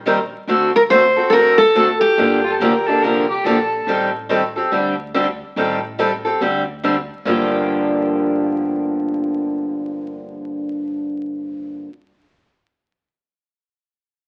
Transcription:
Already playing: A#1
0.06 D#3 G3 A#3 C4 D#4 G4 A#4 C5
0.47 D2 D3 A3 C4 F#4 A4
0.76 A#4
0.90 D3 A3 C4 F#4 A4 C5
1.16 C4 F#4 A4
1.30 A1 D3 A3 F#4 A4 A#4
1.34 C4 A4
1.58 A4
1.75 D3 A3 C4 F#4 A4
2.01 G4
2.18 G1 D3 F3 A#3 D4 G4
2.44 F4
2.51 A4
2.60 D2 D3 F3 A#3 D4 G4 A#4
2.86 A#3 D4 G4 A4
3.02 C2 D3 F3 A#3 D4 G4 A#4
3.29 G4
3.44 A#1 D3 F3 A#3 D4 G4 A4
3.87 A1 D#3 G3 C4 G4 A4
4.29 D#3 G3 C4 G4 A4
4.56 C4 G4 A4
4.72 D2 D3 G3 C4 D4 G4
5.14 D3 G3 C4 D4 G4
5.56 A1 D#3 G3 C4 G4 A4
5.99 D#3 G3 C4 G4 A4
6.25 C4 G4 A4
6.41 D2 D3 G3 C4 D4 G4
6.84 D3 G3 C4 D4 G4
7.25 G1 G2 D3 F3 A#3 D4 G4

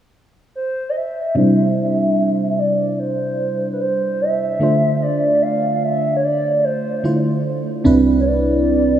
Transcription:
0.55 C5
0.89 D#5
0.96 E5
1.35 C3 G3 D4 E4 C5
2.59 D5
2.99 C5
3.73 B4
3.80 C5
4.21 E5
4.60 D3 A3 D4 F4 C5
5.02 D5
5.42 F5
5.76 F5
5.83 E5
6.17 C#5
6.24 D5
6.64 C5
7.04 D3 A3 E4 F4 C5
7.84 C2 C3 C4 D4 E4 B4
8.20 C#5
8.26 D5

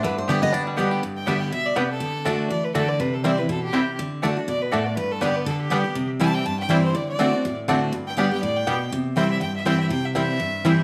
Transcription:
Already playing: D4
0.03 G2 D3 B4
0.18 C5
0.28 D3 G3 B3 G4 D5 G5
0.42 B3 D#5
0.53 D3 D4 D5
0.67 G3
0.77 D3 G3 B3 G4 D5 G5
0.91 G4
1.03 G2
1.17 G5
1.26 D3 G3 B3 D4 G4 D5 E5 G5
1.40 G5
1.52 B2 E5
1.66 D5
1.76 C3 G3 B3 D4 G4 B4 D5 G5
1.90 A4
2.00 D3
2.25 D3 A3 D4 F#4 D5 A5
2.50 E3 D5
2.64 B4
2.74 D3 A3 D4 F#4 A4 D5 A5
2.88 D5
3.00 C3 B4
3.14 A4
3.24 E3 G3 C4 E4 C5 D5 G5
3.38 C4 E4 B4
3.49 B2 A4
3.63 G4
3.73 C3 G3 C4 E4 C5 G5
3.99 D3
4.22 D3 A3 D4 F#4 D5 A5
4.37 D4 F#4
4.48 B2 D5
4.61 B4
4.72 A2 A3 D4 F#4 A4 D5 A5
4.86 D5
4.97 G2 B4
5.11 A4
5.21 D3 G3 B3 D4 G4 D5 G5
5.36 B4
5.46 D3 A4
5.60 G4
5.70 D3 G3 B3 D4 G4 D5 G5
5.84 B3 G4
5.95 C3
6.20 E3 G3 C4 E4 C5 G5 A5
6.34 G5
6.45 G2 A5
6.59 G5
6.69 E3 G3 C4 E4 C5 D5 G5
6.85 C5
6.95 D3 D5
7.08 D5
7.19 D3 A3 C4 D4 F#4 D5 A5
7.33 C4 F#4
7.45 A2
7.68 D3 A3 C4 D4 F#4 D5 A5
7.92 G2
8.07 G5
8.17 D3 G3 B3 D4 G4 D5 G5
8.32 B3 G4 G5
8.43 A2 D5
8.56 G5
8.67 B2 G3 B3 D4 G4 D5 G5
8.92 C3
9.16 E3 G3 C4 E4 C5 G5
9.31 E5
9.41 G2 G5
9.56 E5
9.65 E3 G3 C4 E4 C5 G5
9.80 E5
9.90 C3 G5
10.05 E5
10.15 E3 G3 C4 E4 C5 E5 G5
10.40 G2
10.65 E3 G3 C4 E4 C5 G5

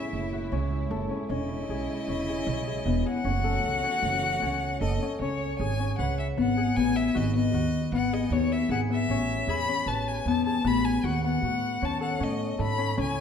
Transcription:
Already playing: A2 G#3 B3 C#4 E4 F#4 G#4 E5
0.13 F#1
0.33 F#4
0.52 C#2 C#4
0.91 F#1 A4
1.11 C#4
1.29 E1 C#3 C#4 E4 D#5
1.69 B1 G#4
2.08 E1 C#4
2.29 G#4
2.47 B1 C#4
2.67 G#4
2.86 E1 B3
3.05 G#4 F#5
3.24 F#1 E3 A3 C#4 F#4
3.44 A4
3.64 C#2
3.83 C#4
4.03 F#1
4.22 F#4
4.42 C#2 C#4
4.81 F#1 A4 D#5
5.02 C#4
5.20 C#2 C#4 C#5
5.59 G#1 G#4 G#5
5.80 C#4
5.98 C#2 B4 F#5
6.19 E5
6.37 G#1 B3 F#5
6.57 G#4
6.76 A1 B3 G#5
6.96 E5
7.15 G#1 F#4 D#5
7.34 B3 D#5
7.53 D#2 F#4
7.92 G#1 B3 F#5
8.13 G#4 D#5
8.30 D#2 B3 C#5
8.52 E5
8.69 G#1 G#4 F#5
8.90 B3 E5
9.08 A1 C#4
9.47 E2 G#4 B5
9.69 C#4
9.86 A1 B4 A5
10.08 G#5
10.26 E2 B3 A5
10.46 G#4 A5
10.64 A1 B3 B5
10.85 G#5
11.04 D#2 F#4 F#5
11.24 B3 F#5
11.43 A2 F#4
11.82 D#2 C#4 A5
12.01 A4 F#5
12.20 A2 C#4 D#5
12.59 G#2 A4 B5
12.78 C#4
12.97 C#2 C#3 B3 C#4 E4 G#5

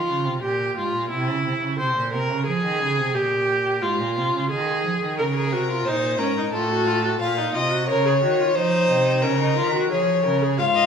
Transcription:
Already playing: F4
0.08 C#3
0.25 C3
0.42 A#2 G4
0.77 G#2 F4
0.94 A#2
1.11 C3 E4
1.28 C#3
1.45 C3
1.62 C#3
1.79 C3 C5
1.96 A#2
2.13 C3 A#4
2.30 C#3
2.46 F3 G#4
2.64 D#3
2.81 C#3
2.98 C3
3.14 A#2 G4
3.82 G#2 F4
4.00 A#2
4.16 C3
4.33 C#3
4.50 D#3 G#4
4.84 F3
5.01 D#3
5.17 C#3 A#4
5.36 G#4
5.52 C3 F#4
5.70 F4
5.85 A#2 D#4 C5
6.19 G#2 C#4 A#4
6.38 D#4
6.53 A2 F4 A4
6.70 F#4
6.87 F4
7.04 F#4
7.20 A#2 F4 F5
7.37 D#4
7.54 C3 F4 D#5
7.71 F#4
7.88 C#3 A#4 C#5
8.06 G#4
8.22 D#3 F#4
8.40 F4
8.55 F3 D#4 C5
8.90 C3
9.23 C#3 C#4 A#4
9.40 D#4
9.57 D#3 F4
9.74 F#4
9.91 F3 G#4 C#5
10.25 C#3 A#4
10.42 G#4
10.58 G#2 F4 F5
10.76 D#5

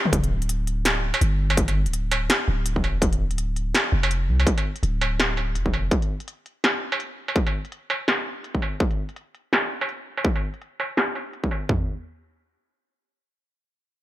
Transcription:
0.06 mid tom
0.13 D1, kick, closed hi-hat
0.24 closed hi-hat
0.42 closed hi-hat
0.49 closed hi-hat
0.67 closed hi-hat
0.85 snare, closed hi-hat
1.14 struck metal
1.21 G1, closed hi-hat
1.50 struck metal
1.57 kick, closed hi-hat
1.68 closed hi-hat, struck metal
1.86 D1, closed hi-hat
1.93 closed hi-hat
2.12 closed hi-hat, struck metal
2.30 snare, closed hi-hat
2.48 D1
2.66 closed hi-hat
2.76 kick
2.84 E1, struck metal
3.02 kick, closed hi-hat
3.13 closed hi-hat
3.31 D1, closed hi-hat
3.38 closed hi-hat
3.56 closed hi-hat
3.75 snare, closed hi-hat
3.92 F1
4.03 struck metal
4.11 closed hi-hat
4.29 C2
4.40 struck metal
4.47 kick, closed hi-hat
4.58 closed hi-hat, struck metal
4.76 closed hi-hat
4.83 D1, closed hi-hat
5.01 closed hi-hat, struck metal
5.20 snare, closed hi-hat
5.37 struck metal
5.55 E1, closed hi-hat
5.66 kick
5.73 F1, struck metal
5.91 kick, closed hi-hat
6.02 closed hi-hat
6.20 closed hi-hat
6.28 closed hi-hat
6.46 closed hi-hat
6.64 snare, closed hi-hat
6.92 struck metal
7.00 closed hi-hat
7.28 struck metal
7.36 kick, closed hi-hat
7.47 closed hi-hat, struck metal
7.65 closed hi-hat
7.72 closed hi-hat
7.90 closed hi-hat, struck metal
8.08 snare, closed hi-hat
8.44 closed hi-hat
8.55 kick
8.62 struck metal
8.80 kick, closed hi-hat
8.91 closed hi-hat
9.09 closed hi-hat
9.16 closed hi-hat
9.35 closed hi-hat
9.53 snare, closed hi-hat
9.81 struck metal
9.89 closed hi-hat
10.17 struck metal
10.25 kick, closed hi-hat
10.36 closed hi-hat, struck metal
10.54 closed hi-hat
10.62 closed hi-hat
10.80 closed hi-hat, struck metal
10.97 snare, closed hi-hat
11.15 struck metal
11.33 closed hi-hat
11.44 kick
11.51 struck metal
11.69 kick, floor tom

